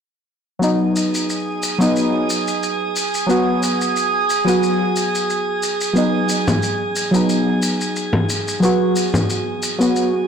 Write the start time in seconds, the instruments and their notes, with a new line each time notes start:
0.59 synth stab F#3 B3, synth texture G#4 G#5, shaker
0.63 synth stab D#4
0.96 shaker
1.15 shaker
1.30 shaker
1.63 shaker
1.78 synth stab F#3 B3 D#4, shaker
1.96 shaker
2.30 shaker
2.48 shaker
2.63 shaker
2.96 shaker
3.14 shaker
3.27 synth stab F#3 B3 F#4, shaker
3.63 shaker
3.81 shaker
3.96 shaker
4.30 shaker
4.45 synth stab F#3 B3, shaker
4.49 synth stab F#4
4.63 shaker
4.96 shaker
5.15 shaker
5.30 shaker
5.63 shaker
5.81 shaker
5.93 synth stab F#3 B3, shaker
5.98 synth stab D#4
6.29 shaker
6.48 frame drum, shaker
6.63 shaker
6.96 shaker
7.11 synth stab F#3 B3, shaker
7.15 synth stab D#4
7.29 shaker
7.62 shaker
7.81 shaker
7.96 shaker
8.13 frame drum
8.30 shaker
8.48 shaker
8.60 synth stab F#3 B3, shaker
8.64 synth stab F#4
8.96 shaker
9.14 frame drum, shaker
9.30 shaker
9.63 shaker
9.78 synth stab F#3 B3 F#4, shaker
9.96 shaker